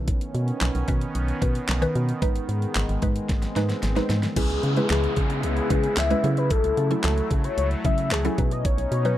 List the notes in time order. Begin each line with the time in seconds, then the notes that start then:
Already playing: B1 D#3 B3 C#4 B4
0.08 kick, closed hi-hat
0.21 closed hi-hat
0.35 B2, closed hi-hat
0.48 closed hi-hat
0.61 B1, snare, clap, closed hi-hat
0.75 B1, closed hi-hat
0.88 B2 D#3 C#4 B4, kick, closed hi-hat
1.01 closed hi-hat
1.15 B1, closed hi-hat
1.28 closed hi-hat
1.42 B2 D#3 C#4 B4, kick, closed hi-hat
1.55 closed hi-hat
1.68 B1, snare, clap, closed hi-hat
1.82 D#3 C#4 B4, closed hi-hat
1.95 B2, closed hi-hat
2.09 closed hi-hat
2.22 G#1 G#3 D#4 B4, kick, closed hi-hat, swell
2.36 closed hi-hat
2.49 G#2, closed hi-hat
2.62 closed hi-hat
2.75 G#1, snare, clap, closed hi-hat
2.89 G#1, closed hi-hat
3.02 G#2 G#3 D#4 B4, kick, closed hi-hat
3.16 closed hi-hat
3.29 G#1, kick, snare, closed hi-hat
3.42 snare, closed hi-hat
3.56 G#2 G#3 D#4 B4, snare, closed hi-hat
3.69 snare, closed hi-hat
3.83 G#1, snare, closed hi-hat
3.96 G#3 D#4 B4, snare, closed hi-hat
4.09 G#2, snare, closed hi-hat
4.23 snare, closed hi-hat
4.36 C#2 C#3 G#3 B3 C#4 E4 G#4 B4, kick, closed hi-hat, crash, downlifter
4.50 C#2, closed hi-hat
4.63 C#3, closed hi-hat
4.77 G#3 C#4 E4 B4, closed hi-hat
4.90 C#2 G#4, snare, clap, closed hi-hat
5.04 closed hi-hat
5.16 C#3, kick, closed hi-hat
5.30 closed hi-hat
5.43 C#2 G#4, closed hi-hat
5.57 closed hi-hat
5.70 C#3 G#3 C#4 E4 B4, kick, closed hi-hat
5.84 closed hi-hat
5.97 C#2 E5, snare, clap, closed hi-hat
6.10 G#3 C#4 E4 B4, closed hi-hat
6.24 C#3 F#3 A3 C#4 E4 A4, closed hi-hat
6.37 B4, closed hi-hat
6.50 A4, kick, closed hi-hat
6.64 C#2, closed hi-hat
6.77 C#3 A4, closed hi-hat
6.91 F#3 C#4 E4 A4, closed hi-hat
7.04 C#2 A4, snare, clap, closed hi-hat
7.18 closed hi-hat
7.31 C#3, kick, closed hi-hat
7.44 C#5, closed hi-hat
7.58 C#2 C#5, closed hi-hat
7.71 closed hi-hat
7.85 C#3 F#3 C#4 E4 G#4 E5, kick, closed hi-hat
7.98 closed hi-hat
8.11 C#2 G#4, snare, clap, closed hi-hat
8.25 F#3 C#4 E4 A4, closed hi-hat
8.38 B2 F#3 B3 C#4 D#4 B4, kick, closed hi-hat
8.51 D#5, closed hi-hat
8.65 C#5, kick, closed hi-hat
8.78 B1, closed hi-hat
8.92 B2 C#5, closed hi-hat
9.05 F#3 C#4 D#4 B4, closed hi-hat